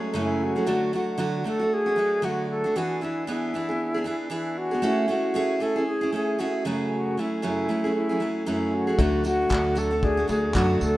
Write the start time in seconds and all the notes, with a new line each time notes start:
Already playing: F#3 G#3 A3 C#4 F#4 G#4 C#5
0.13 F#2 C#3 F#3 A3 C#4 G#4
0.18 E4
0.44 F#4
0.56 F#3 A3 C#4 G#4
0.66 D3 F#3 A3 D4 F#4
0.93 F#3 A3 D4 F#4
1.18 D3 F#3 A3 D4 F#4
1.44 F#3 A3 D4 F#4 A4
1.59 A3 D4 F#4
1.74 G#4
1.86 A3 D4 F#4
1.96 F#3 A3 D4 F#4
2.22 D3 F#3 A3 D4 F#4
2.50 A4
2.64 A3 D4 F#4
2.76 E3 B3 D4 F#4 G#4
3.01 E3 B3 D4 E4 G#4
3.27 E3 B3 D4 E4 G#4
3.54 E3 B3 D4 G#4
3.69 B3 D4 G#4
3.94 B3 D4 G#4
4.04 E3 B3 D4 G#4
4.30 E3 B3 D4 E4 G#4
4.58 F#4
4.71 B3 D4 G#4
4.82 A3 C#4 E4 G#4
5.08 A3 C#4 E4 F#4 G#4
5.34 A3 C#4 E4 G#4
5.60 A3 C#4 E4 G#4 A4
5.76 C#4 E4 G#4
5.87 G#4
6.01 C#4 E4 G#4
6.12 A3 C#4 E4 G#4
6.39 A3 C#4 E4 F#4 G#4
6.65 F#2 C#3 F#3 A3 C#4 G#4
6.94 F#4
7.17 F#3 A3 C#4 E4 G#4
7.42 F#2 C#3 F#3 A3 C#4 E4 G#4
7.68 F#3 A3 C#4 G#4
7.84 F#3 A3 C#4 G#4
7.97 E4
8.09 F#3 A3 C#4 G#4
8.20 F#3 A3 C#4 G#4
8.46 F#2 C#3 F#3 A3 C#4 E4 G#4
8.74 F#4
8.87 F#3 A3 C#4 G#4
8.98 D2 D3 F#3 A3 D4 F#4 D5, kick
9.24 F#3 A3 D4 F#4, tambourine
9.49 D2 D3 F#3 A3 D4 F#4, kick, clap
9.75 F#3 A3 D4 F#4 A4, tambourine
9.91 A3 D4 F#4
10.03 A3 D4 F#4 G#4 D5, kick
10.17 A3 D4 F#4
10.28 D2 F#3 A3 D4 F#4 G#4, tambourine
10.54 F#2 D3 F#3 A3 D4 F#4, kick, clap
10.81 D2 A4, tambourine